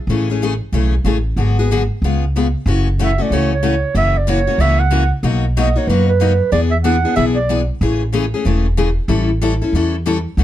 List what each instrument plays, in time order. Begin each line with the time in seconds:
0.07 upright bass A1, steel-string acoustic guitar C#3 E3 A3 C#4 G#4
0.30 steel-string acoustic guitar A3 C#4 G#4
0.42 steel-string acoustic guitar C#3 E3 A3 C#4 G#4
0.72 upright bass B1, steel-string acoustic guitar C#3 E3 A3 C#4 G#4
1.04 upright bass A1, steel-string acoustic guitar C#3 E3 A3 C#4 G#4
1.36 upright bass G#1, steel-string acoustic guitar D3 F#3 B3 F#4 G#4
1.59 steel-string acoustic guitar B3 F#4 G#4
1.71 steel-string acoustic guitar D3 F#3 B3 F#4 G#4
2.02 upright bass C#2, steel-string acoustic guitar C#3 G#3 B3 F4 G#4
2.36 steel-string acoustic guitar C#3 G#3 B3 F4 G#4
2.66 upright bass F#1, steel-string acoustic guitar C#3 E3 A3 C#4 F#4
2.99 steel-string acoustic guitar C#3 E3 A3 C#4 F#4, clarinet E5
3.18 steel-string acoustic guitar A3 C#4 F#4, clarinet D5
3.30 upright bass C#2, steel-string acoustic guitar C#3 E3 A3 C#4 F#4, clarinet C#5
3.53 clarinet C#5
3.63 steel-string acoustic guitar C#3 E3 A3 C#4 F#4
3.95 upright bass F#1, steel-string acoustic guitar C#3 E3 A#3 C#4 F#4, clarinet E5
4.18 clarinet D5
4.27 steel-string acoustic guitar C#3 E3 A#3 C#4 F#4, clarinet C#5
4.47 steel-string acoustic guitar A#3 C#4 F#4
4.58 upright bass C#2, steel-string acoustic guitar C#3 E3 A#3 C#4 F#4, clarinet E5
4.80 clarinet F#5
4.91 steel-string acoustic guitar C#3 E3 A#3 C#4 F#4
5.23 upright bass B1, steel-string acoustic guitar B2 F#3 A#3 D#4 F#4
5.57 steel-string acoustic guitar B2 F#3 A#3 D#4 F#4, clarinet D#5
5.76 steel-string acoustic guitar A#3 D#4 F#4, clarinet C#5
5.87 upright bass F#2, steel-string acoustic guitar B2 F#3 A#3 D#4 F#4, clarinet B4
6.09 clarinet B4
6.20 steel-string acoustic guitar B2 F#3 A#3 D#4 F#4
6.52 upright bass E2, steel-string acoustic guitar E3 B3 D4 G#4, clarinet D5
6.71 clarinet E5
6.84 steel-string acoustic guitar E3 B3 D4 G#4, clarinet F#5
7.05 steel-string acoustic guitar B3 D4 G#4
7.16 upright bass B1, steel-string acoustic guitar E3 B3 D4 G#4, clarinet E5
7.35 clarinet D5
7.49 steel-string acoustic guitar E3 B3 D4 G#4
7.81 upright bass A1, steel-string acoustic guitar C#3 E3 A3 C#4 G#4
8.13 steel-string acoustic guitar C#3 E3 A3 C#4 G#4
8.34 steel-string acoustic guitar A3 C#4 G#4
8.45 upright bass E1, steel-string acoustic guitar C#3 E3 A3 C#4 G#4
8.77 steel-string acoustic guitar C#3 E3 A3 C#4 G#4
9.08 upright bass A1, steel-string acoustic guitar E3 G3 C#4 E4 A4
9.42 steel-string acoustic guitar E3 G3 C#4 E4 A4
9.62 steel-string acoustic guitar C#4 E4 A4
9.73 upright bass E2, steel-string acoustic guitar E3 G3 C#4 E4 A4
10.06 steel-string acoustic guitar E3 G3 C#4 E4 A4
10.37 upright bass D2, steel-string acoustic guitar D3 F#3 A3 C#4 F#4